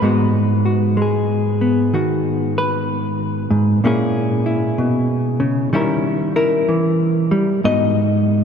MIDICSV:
0, 0, Header, 1, 2, 480
1, 0, Start_track
1, 0, Key_signature, 5, "minor"
1, 0, Tempo, 952381
1, 12, Time_signature, 4, 2, 24, 8
1, 4254, End_track
2, 0, Start_track
2, 0, Title_t, "Hollow-body jazz guitar"
2, 0, Program_c, 0, 26
2, 0, Note_on_c, 0, 71, 112
2, 9, Note_on_c, 0, 44, 77
2, 14, Note_on_c, 0, 56, 56
2, 17, Note_on_c, 0, 59, 51
2, 24, Note_on_c, 0, 66, 51
2, 324, Note_off_c, 0, 66, 0
2, 330, Note_on_c, 0, 66, 52
2, 482, Note_off_c, 0, 56, 0
2, 488, Note_on_c, 0, 56, 67
2, 500, Note_off_c, 0, 71, 0
2, 513, Note_on_c, 0, 68, 59
2, 807, Note_off_c, 0, 59, 0
2, 813, Note_on_c, 0, 59, 49
2, 973, Note_off_c, 0, 66, 0
2, 975, Note_on_c, 0, 51, 74
2, 980, Note_on_c, 0, 66, 56
2, 1296, Note_off_c, 0, 68, 0
2, 1300, Note_on_c, 0, 71, 87
2, 1760, Note_off_c, 0, 44, 0
2, 1766, Note_on_c, 0, 44, 68
2, 1773, Note_off_c, 0, 71, 0
2, 1909, Note_off_c, 0, 56, 0
2, 1913, Note_off_c, 0, 51, 0
2, 1915, Note_off_c, 0, 66, 0
2, 1931, Note_off_c, 0, 44, 0
2, 1934, Note_off_c, 0, 59, 0
2, 1934, Note_on_c, 0, 46, 79
2, 1938, Note_on_c, 0, 58, 66
2, 1941, Note_on_c, 0, 61, 67
2, 1944, Note_on_c, 0, 64, 61
2, 1950, Note_on_c, 0, 68, 71
2, 2242, Note_off_c, 0, 64, 0
2, 2248, Note_on_c, 0, 64, 67
2, 2408, Note_off_c, 0, 46, 0
2, 2410, Note_on_c, 0, 47, 73
2, 2721, Note_on_c, 0, 49, 69
2, 2725, Note_off_c, 0, 47, 0
2, 2872, Note_off_c, 0, 64, 0
2, 2875, Note_off_c, 0, 58, 0
2, 2877, Note_off_c, 0, 61, 0
2, 2885, Note_off_c, 0, 49, 0
2, 2887, Note_on_c, 0, 51, 82
2, 2890, Note_on_c, 0, 55, 67
2, 2892, Note_on_c, 0, 61, 65
2, 2897, Note_on_c, 0, 64, 72
2, 2900, Note_off_c, 0, 68, 0
2, 2902, Note_on_c, 0, 70, 73
2, 3200, Note_off_c, 0, 70, 0
2, 3201, Note_off_c, 0, 64, 0
2, 3206, Note_on_c, 0, 70, 85
2, 3207, Note_on_c, 0, 64, 65
2, 3367, Note_off_c, 0, 51, 0
2, 3369, Note_on_c, 0, 52, 63
2, 3680, Note_off_c, 0, 55, 0
2, 3685, Note_off_c, 0, 52, 0
2, 3686, Note_on_c, 0, 55, 72
2, 3832, Note_off_c, 0, 64, 0
2, 3833, Note_off_c, 0, 61, 0
2, 3852, Note_off_c, 0, 55, 0
2, 3852, Note_off_c, 0, 70, 0
2, 3852, Note_on_c, 0, 44, 74
2, 3854, Note_on_c, 0, 59, 45
2, 3857, Note_on_c, 0, 75, 105
2, 3858, Note_on_c, 0, 63, 43
2, 3863, Note_on_c, 0, 66, 49
2, 4254, Note_off_c, 0, 44, 0
2, 4254, Note_off_c, 0, 59, 0
2, 4254, Note_off_c, 0, 63, 0
2, 4254, Note_off_c, 0, 66, 0
2, 4254, Note_off_c, 0, 75, 0
2, 4254, End_track
0, 0, End_of_file